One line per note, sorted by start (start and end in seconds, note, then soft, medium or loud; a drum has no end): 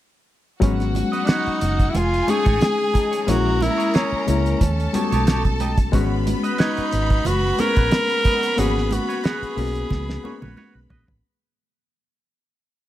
0.60 1.01 G#1 medium
0.60 1.66 F#3 loud
0.60 1.67 G#3 medium
0.60 1.67 B3 medium
0.60 1.68 C#4 loud
0.60 0.83 F#4 medium
0.60 1.93 F#4 medium
0.60 0.84 B4 medium
0.60 0.84 C#5 medium
0.60 1.93 F#5 medium
0.60 kick loud
0.60 closed hi-hat medium
0.60 low conga medium
0.80 snare soft
0.80 closed hi-hat soft
0.94 muted clean electric guitar stroke soft
0.94 closed hi-hat medium
0.94 muted conga soft
0.94 high conga medium
1.12 1.26 F#4 soft
1.12 1.27 B4 soft
1.12 1.28 D#5 soft
1.12 closed hi-hat soft
1.24 1.34 D4 medium
1.24 1.59 F#4 medium
1.24 1.59 B4 medium
1.24 closed hi-hat medium
1.29 1.91 D#4 medium
1.29 1.60 C#5 medium
1.29 snare loud
1.29 muted conga soft
1.46 muted fingered electric bass stroke soft
1.46 closed hi-hat soft
1.60 1.88 F#1 medium
1.60 muted clean electric guitar stroke soft
1.60 closed hi-hat medium
1.60 muted conga soft
1.79 muted clean electric guitar stroke soft
1.79 kick medium
1.79 closed hi-hat soft
1.90 1.99 E4 medium
1.94 2.21 F1 medium
1.94 2.31 F4 loud
1.94 3.25 G#4 medium
1.94 3.25 G#5 medium
1.94 muted clean electric guitar stroke soft
1.94 closed hi-hat medium
1.94 muted conga soft
1.94 high conga medium
1.94 low conga medium
2.11 muted clean electric guitar stroke soft
2.11 closed hi-hat soft
2.27 3.07 G#3 medium
2.27 3.08 A3 medium
2.27 3.08 C#4 medium
2.27 2.45 D#4 soft
2.27 3.09 D#4 medium
2.27 3.22 G#4 loud
2.27 2.44 A4 medium
2.27 2.43 C#5 medium
2.27 closed hi-hat medium
2.27 muted conga soft
2.27 high conga medium
2.44 2.58 A1 medium
2.44 2.59 D#4 soft
2.44 2.59 A4 medium
2.44 2.60 C#5 medium
2.44 kick medium
2.44 closed hi-hat medium
2.44 high conga medium
2.60 muted clean electric guitar stroke soft
2.60 snare loud
2.60 closed hi-hat medium
2.60 high conga medium
2.78 muted clean electric guitar stroke soft
2.94 3.12 D#4 soft
2.94 3.11 A4 soft
2.94 3.11 D#5 soft
2.94 kick medium
2.94 closed hi-hat medium
2.94 muted conga soft
2.94 high conga soft
3.11 3.26 D#4 soft
3.11 3.27 A4 soft
3.11 3.27 C#5 medium
3.11 closed hi-hat medium
3.22 3.30 G#4 medium
3.27 3.67 A#1 medium
3.27 4.07 G#3 medium
3.27 4.07 A#3 medium
3.27 4.08 C#4 medium
3.27 3.49 E4 medium
3.27 4.08 E4 loud
3.27 3.64 F#4 medium
3.27 3.50 G#4 medium
3.27 4.58 A#4 medium
3.27 3.50 C#5 medium
3.27 4.58 A#5 medium
3.27 closed hi-hat medium
3.27 muted conga soft
3.27 low conga medium
3.60 3.97 E4 medium
3.60 muted clean electric guitar stroke soft
3.60 closed hi-hat medium
3.60 muted conga soft
3.60 high conga medium
3.78 3.93 E4 soft
3.78 3.93 G#4 soft
3.78 3.94 C#5 soft
3.78 closed hi-hat soft
3.94 5.28 C#4 medium
3.94 4.25 E4 medium
3.94 4.25 G#4 medium
3.94 4.26 C#5 medium
3.94 snare medium
3.94 closed hi-hat medium
3.94 muted conga soft
4.12 muted fingered electric bass stroke soft
4.27 4.53 C#2 medium
4.27 4.61 G#3 medium
4.27 4.61 A#3 medium
4.27 4.62 C#4 medium
4.27 4.62 E4 medium
4.27 muted clean electric guitar stroke soft
4.27 closed hi-hat medium
4.27 muted conga soft
4.45 muted clean electric guitar stroke soft
4.45 closed hi-hat soft
4.59 4.87 D#2 medium
4.59 5.90 A4 medium
4.59 5.90 A5 medium
4.59 kick medium
4.59 closed hi-hat medium
4.59 high conga medium
4.59 low conga medium
4.79 muted clean electric guitar stroke soft
4.79 closed hi-hat soft
4.93 5.73 G3 medium
4.93 5.73 B3 medium
4.93 5.74 C#4 medium
4.93 5.12 D#4 soft
4.93 5.74 F#4 medium
4.93 5.12 G4 soft
4.93 5.11 C#5 medium
4.93 closed hi-hat medium
4.93 muted conga soft
4.93 high conga medium
5.12 5.90 B1 medium
5.12 5.26 D#4 soft
5.12 5.27 G4 soft
5.12 5.27 C#5 medium
5.12 closed hi-hat medium
5.12 high conga medium
5.27 5.49 D#4 medium
5.27 5.45 G4 medium
5.27 5.44 C#5 medium
5.27 snare loud
5.27 closed hi-hat medium
5.27 muted conga soft
5.27 high conga medium
5.45 muted clean electric guitar stroke soft
5.45 kick medium
5.45 closed hi-hat soft
5.60 5.78 D#4 medium
5.60 5.78 G4 medium
5.60 5.78 D#5 medium
5.60 closed hi-hat medium
5.60 muted conga soft
5.60 high conga soft
5.78 muted clean electric guitar stroke soft
5.78 kick medium
5.78 closed hi-hat medium
5.92 6.32 G#1 medium
5.92 6.98 G#3 loud
5.92 11.20 B3 medium
5.92 6.98 B3 loud
5.92 6.99 C#4 loud
5.92 6.15 F#4 medium
5.92 6.99 F#4 loud
5.92 6.15 B4 medium
5.92 6.16 C#5 medium
5.92 11.20 B5 medium
5.92 kick loud
5.92 closed hi-hat medium
5.92 muted conga soft
5.92 low conga medium
6.26 muted clean electric guitar stroke soft
6.26 closed hi-hat medium
6.26 high conga medium
6.43 6.58 F#4 soft
6.43 6.59 B4 medium
6.43 6.59 D#5 medium
6.43 closed hi-hat soft
6.58 7.28 D#4 medium
6.58 6.90 F#4 medium
6.58 6.91 B4 medium
6.58 6.91 C#5 medium
6.58 snare loud
6.58 closed hi-hat medium
6.58 muted conga soft
6.77 muted fingered electric bass stroke soft
6.77 closed hi-hat soft
6.92 7.19 G#1 medium
6.92 muted clean electric guitar stroke soft
6.92 closed hi-hat medium
6.92 muted conga soft
7.10 kick medium
7.10 closed hi-hat soft
7.25 7.51 F#1 medium
7.25 7.61 F#4 loud
7.25 muted clean electric guitar stroke soft
7.25 closed hi-hat medium
7.25 muted conga soft
7.25 high conga medium
7.25 low conga medium
7.43 muted clean electric guitar stroke soft
7.57 8.38 A#3 medium
7.57 8.38 B3 medium
7.57 8.38 C#4 medium
7.57 7.76 F#4 soft
7.57 8.39 G#4 medium
7.57 8.61 A#4 loud
7.57 7.76 B4 soft
7.57 7.76 C#5 medium
7.57 closed hi-hat medium
7.57 muted conga soft
7.57 high conga medium
7.76 7.89 A#1 medium
7.76 7.90 F#4 soft
7.76 7.91 B4 medium
7.76 7.92 C#5 medium
7.76 kick medium
7.76 closed hi-hat medium
7.76 high conga medium
7.91 muted clean electric guitar stroke soft
7.91 snare medium
7.91 closed hi-hat medium
7.91 muted conga soft
7.91 high conga medium
8.10 muted clean electric guitar stroke soft
8.10 closed hi-hat soft
8.24 8.43 F#4 soft
8.24 8.42 B4 medium
8.24 8.42 D#5 medium
8.24 kick medium
8.24 closed hi-hat medium
8.24 muted conga soft
8.24 high conga soft
8.43 8.56 F#4 soft
8.43 8.58 C#5 medium
8.43 closed hi-hat medium
8.56 8.97 G#1 medium
8.56 9.37 A#3 medium
8.56 9.37 B3 medium
8.56 9.38 C#4 medium
8.56 8.80 F#4 medium
8.56 9.38 F#4 loud
8.56 8.94 G#4 medium
8.56 8.80 B4 medium
8.56 8.81 C#5 medium
8.56 closed hi-hat medium
8.56 low conga medium
8.78 snare soft
8.91 9.26 F#4 medium
8.91 muted clean electric guitar stroke soft
8.91 closed hi-hat medium
8.91 muted conga soft
8.91 high conga medium
9.09 9.22 F#4 soft
9.09 9.23 B4 soft
9.09 9.24 C#5 medium
9.09 closed hi-hat soft
9.24 9.55 F#4 medium
9.24 10.54 G#4 medium
9.24 9.55 B4 medium
9.24 9.56 C#5 medium
9.24 snare loud
9.24 closed hi-hat medium
9.24 muted conga soft
9.42 muted fingered electric bass stroke soft
9.42 closed hi-hat soft
9.56 9.83 B1 medium
9.56 10.11 A#3 medium
9.56 10.11 B3 medium
9.56 10.11 C#4 medium
9.56 10.12 F#4 medium
9.56 muted clean electric guitar stroke soft
9.56 open hi-hat soft
9.56 muted conga soft
9.75 muted clean electric guitar stroke soft
9.75 closed hi-hat soft
9.90 10.16 C#2 medium
9.90 muted clean electric guitar stroke soft
9.90 kick medium
9.90 snare medium
9.90 muted conga soft
9.90 high conga medium
9.90 low conga medium
10.08 muted clean electric guitar stroke soft
10.08 snare medium
10.23 11.04 A#3 medium
10.23 11.04 B3 medium
10.23 11.04 C#4 medium
10.23 10.41 F#4 soft
10.23 11.05 G#4 medium
10.23 10.41 B4 soft
10.23 10.40 C#5 medium
10.23 muted conga soft
10.23 high conga medium
10.41 10.54 A#1 medium
10.41 10.56 F#4 soft
10.41 10.56 B4 soft
10.41 10.57 C#5 medium
10.41 high tom medium
10.41 high conga medium
10.57 10.79 F#4 medium
10.57 10.75 B4 medium
10.57 10.74 C#5 medium
10.57 high conga medium
10.75 10.87 B1 medium
10.75 muted clean electric guitar stroke soft
10.90 11.04 A#1 medium
10.90 11.08 F#4 soft
10.90 11.08 B4 soft
10.90 11.07 D#5 soft
10.90 floor tom medium
10.90 high conga soft
10.90 low conga medium
11.08 11.20 A1 medium
11.08 floor tom medium